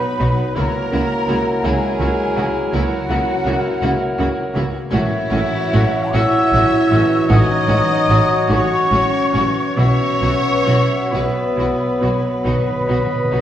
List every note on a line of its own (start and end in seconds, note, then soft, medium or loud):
0.00 0.18 F#3 soft
0.00 0.52 F#3 medium
0.00 0.53 B3 medium
0.00 0.37 B3 soft
0.00 0.57 D#4 medium
0.00 0.91 F#4 soft
0.00 0.52 B4 medium
0.00 0.56 B4 medium
0.00 0.59 B4 medium
0.00 0.59 D#5 medium
0.00 1.45 F#5 medium
0.00 0.56 B5 loud
0.19 0.29 B1 medium
0.19 0.28 B2 medium
0.19 4.09 F#3 soft
0.19 0.27 B3 soft
0.19 0.28 D#4 soft
0.19 0.28 F#4 soft
0.38 0.59 B3 soft
0.55 0.65 C#2 medium
0.55 4.45 C#3 medium
0.55 0.64 C#3 medium
0.55 4.59 F#3 medium
0.55 0.63 A#3 medium
0.55 1.61 A#3 medium
0.55 0.63 E4 soft
0.55 4.63 E4 medium
0.55 0.64 F#4 medium
0.55 1.61 A#4 medium
0.55 4.60 A#4 medium
0.55 1.62 A#5 loud
0.74 2.17 A#3 soft
0.92 1.01 C#2 medium
0.92 1.01 C#3 medium
0.92 1.01 A#3 soft
0.92 1.01 E4 medium
0.92 1.00 F#4 medium
0.92 2.00 F#4 medium
1.28 1.37 C#2 medium
1.28 1.36 C#3 medium
1.28 1.36 A#3 soft
1.28 1.36 E4 soft
1.28 1.37 F#4 medium
1.28 1.63 E5 medium
1.46 3.62 F#5 medium
1.63 1.72 C#2 medium
1.63 1.72 C#3 medium
1.63 2.72 G#3 medium
1.63 1.72 A#3 medium
1.63 1.72 E4 medium
1.63 1.72 F#4 medium
1.63 2.73 G#4 medium
1.63 3.45 E5 medium
1.63 2.73 G#5 medium
1.82 3.26 A#4 medium
2.00 2.08 C#2 medium
2.00 2.08 C#3 medium
2.00 2.08 A#3 soft
2.00 2.08 E4 medium
2.00 3.08 F#4 medium
2.00 2.09 F#4 soft
2.19 2.54 A#3 medium
2.36 2.44 C#2 medium
2.36 2.44 C#3 medium
2.36 2.45 A#3 medium
2.36 2.72 C#4 medium
2.36 2.45 E4 medium
2.36 2.45 F#4 medium
2.55 2.90 A#3 medium
2.72 2.80 C#2 medium
2.72 2.81 C#3 medium
2.72 4.54 F#3 medium
2.72 2.81 A#3 medium
2.72 4.52 C#4 medium
2.72 2.81 E4 medium
2.72 4.54 F#4 medium
2.72 2.82 F#4 medium
2.72 4.55 F#5 loud
2.91 4.34 A#3 medium
3.09 3.17 C#2 medium
3.09 3.17 C#3 medium
3.09 3.17 A#3 medium
3.09 3.18 E4 medium
3.09 3.17 F#4 medium
3.09 4.16 F#4 medium
3.27 3.99 A#4 medium
3.45 3.53 C#2 medium
3.45 3.54 C#3 medium
3.45 3.55 A#3 medium
3.45 3.55 E4 medium
3.45 3.54 F#4 medium
3.45 3.80 E5 medium
3.64 5.71 F#5 medium
3.81 3.89 C#2 medium
3.81 3.91 C#3 medium
3.81 3.91 A#3 medium
3.81 3.90 E4 medium
3.81 3.90 F#4 medium
3.81 7.71 E5 medium
4.00 4.94 A#4 medium
4.17 4.26 C#2 medium
4.17 4.27 C#3 medium
4.17 4.27 A#3 medium
4.17 4.27 E4 medium
4.17 5.29 F#4 medium
4.17 4.27 F#4 medium
4.36 4.72 A#3 medium
4.53 4.62 C#2 medium
4.53 4.62 C#3 medium
4.53 4.62 A#3 medium
4.53 5.09 C#4 soft
4.53 4.63 E4 medium
4.53 4.63 F#4 medium
4.73 4.95 A#3 medium
4.91 5.00 A1 medium
4.91 7.27 A2 medium
4.91 4.99 A2 medium
4.91 6.11 E3 medium
4.91 4.99 F#3 medium
4.91 9.74 F#3 medium
4.91 4.99 C#4 medium
4.91 6.10 E4 loud
4.91 4.99 F#4 medium
4.91 9.74 F#4 medium
4.91 9.78 C#5 medium
4.91 6.11 E5 loud
5.10 6.71 C#4 medium
5.30 5.40 A1 medium
5.30 5.39 A2 medium
5.30 5.39 F#3 medium
5.30 5.39 C#4 medium
5.30 6.53 F#4 medium
5.30 5.39 F#4 medium
5.51 5.92 C#5 medium
5.72 5.82 A1 medium
5.72 5.81 A2 medium
5.72 5.81 F#3 medium
5.72 5.82 C#4 medium
5.72 5.82 F#4 medium
5.72 6.13 F#5 medium
5.93 6.33 C#5 medium
6.13 6.22 A1 medium
6.13 6.23 A2 medium
6.13 6.21 F#3 medium
6.13 6.21 C#4 medium
6.13 7.29 E4 medium
6.13 6.23 F#4 medium
6.13 7.29 E5 loud
6.13 8.08 F#5 medium
6.13 7.29 E6 loud
6.34 7.87 C#5 medium
6.53 6.62 A1 medium
6.53 6.62 A2 medium
6.53 6.62 F#3 medium
6.53 6.61 C#4 medium
6.53 6.63 F#4 medium
6.72 7.08 C#4 medium
6.91 6.99 A1 medium
6.91 6.99 A2 medium
6.91 7.47 E3 medium
6.91 6.99 F#3 medium
6.91 6.99 C#4 medium
6.91 7.01 F#4 medium
7.09 9.11 C#4 medium
7.28 7.38 A1 medium
7.28 9.80 A2 medium
7.28 7.38 A2 medium
7.28 7.37 F#3 medium
7.28 7.37 C#4 medium
7.28 8.51 D#4 loud
7.28 7.38 F#4 medium
7.28 8.50 D#5 loud
7.28 8.47 D#6 loud
7.48 9.32 E3 medium
7.68 7.77 A1 medium
7.68 7.77 A2 medium
7.68 7.77 F#3 medium
7.68 7.76 C#4 medium
7.68 8.90 F#4 medium
7.68 7.77 F#4 medium
7.89 8.27 C#5 medium
8.09 8.18 A1 medium
8.09 8.17 A2 medium
8.09 8.17 F#3 medium
8.09 8.17 C#4 medium
8.09 8.18 F#4 medium
8.09 8.48 F#5 medium
8.29 8.69 C#5 medium
8.49 8.58 A1 medium
8.49 8.57 A2 medium
8.49 8.57 F#3 medium
8.49 8.57 C#4 medium
8.49 9.76 C#4 loud
8.49 8.58 F#4 medium
8.49 9.76 C#5 medium
8.49 10.90 F#5 medium
8.49 9.76 C#6 loud
8.71 9.81 C#5 medium
8.91 8.99 A1 medium
8.91 8.99 A2 medium
8.91 8.99 F#3 medium
8.91 8.99 C#4 medium
8.91 10.22 F#4 medium
8.91 9.00 F#4 medium
9.12 9.54 C#4 soft
9.32 9.42 A1 medium
9.32 9.42 A2 medium
9.32 9.81 E3 soft
9.32 9.40 F#3 medium
9.32 9.40 C#4 medium
9.32 9.42 F#4 medium
9.55 9.81 C#4 medium
9.77 9.86 B1 medium
9.77 9.85 B2 medium
9.77 12.44 B2 medium
9.77 9.85 F#3 medium
9.77 13.41 F#3 medium
9.77 11.10 C#4 medium
9.77 9.85 E4 medium
9.77 11.01 F#4 medium
9.77 9.86 F#4 medium
9.77 11.10 C#5 loud
9.77 12.13 E5 medium
9.77 11.10 C#6 loud
10.00 11.80 B3 medium
10.21 10.30 B1 medium
10.21 10.30 B2 medium
10.21 10.29 F#3 medium
10.21 10.30 E4 soft
10.21 11.57 F#4 medium
10.21 10.31 F#4 medium
10.45 11.35 B4 medium
10.66 10.75 B1 medium
10.66 10.75 B2 medium
10.66 10.74 F#3 medium
10.66 10.74 E4 medium
10.66 10.75 F#4 medium
10.91 13.41 F#5 medium
11.11 11.22 B1 medium
11.11 11.21 B2 medium
11.11 11.19 F#3 soft
11.11 12.47 B3 medium
11.11 13.41 B3 medium
11.11 11.19 E4 medium
11.11 11.22 F#4 medium
11.11 13.41 B4 medium
11.11 12.49 E5 medium
11.11 13.41 B5 medium
11.37 13.10 B4 medium
11.57 11.67 B1 medium
11.57 11.66 B2 medium
11.57 11.65 F#3 soft
11.57 11.65 E4 medium
11.57 12.88 F#4 medium
11.57 11.67 F#4 medium
11.81 12.23 B3 medium
12.02 12.11 B1 medium
12.02 12.10 B2 medium
12.02 12.10 F#3 soft
12.02 13.41 F#3 soft
12.02 12.10 E4 soft
12.02 12.11 F#4 soft
12.24 12.67 B3 soft
12.44 12.54 B1 medium
12.44 12.53 B2 medium
12.44 13.41 B2 medium
12.44 12.53 B2 soft
12.44 12.52 F#3 medium
12.44 12.52 D#4 medium
12.44 12.54 F#4 medium
12.44 13.41 B4 medium
12.44 13.41 D#5 medium
12.54 12.62 B2 soft
12.63 12.70 B2 soft
12.68 12.79 B2 soft
12.68 13.41 B3 soft
12.80 12.87 B2 soft
12.88 12.97 B1 medium
12.88 12.97 B2 soft
12.88 12.97 B2 medium
12.88 12.96 F#3 medium
12.88 12.96 D#4 medium
12.88 13.41 F#4 soft
12.88 12.98 F#4 medium
12.98 13.05 B2 soft
13.06 13.14 B2 soft
13.11 13.41 B4 soft
13.16 13.23 B2 soft
13.24 13.32 B2 soft
13.31 13.41 B1 medium
13.31 13.41 B2 medium
13.31 13.40 B2 soft
13.31 13.39 F#3 medium
13.31 13.39 D#4 soft
13.31 13.41 F#4 soft
13.31 13.41 D#5 medium